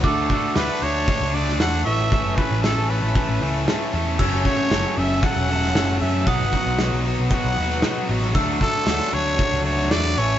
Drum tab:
CC |----------------|----------------|x---------------|----------------|
HH |o-o-o-o-o-o-o-o-|o-o-o-o-o-o-o-o-|--o-o-o-o-o-o-o-|o-o-o-o-o-o-o-o-|
SD |----o------oo---|----o-------o---|----o------oo---|----o------oo--o|
BD |o-o-----o-------|o-o-----o-------|o-o-----o-------|o-o-----o-------|

CC |----------------|
HH |o-o-o-o-o-o-o-o-|
SD |----o------oo---|
BD |o-o-----o-------|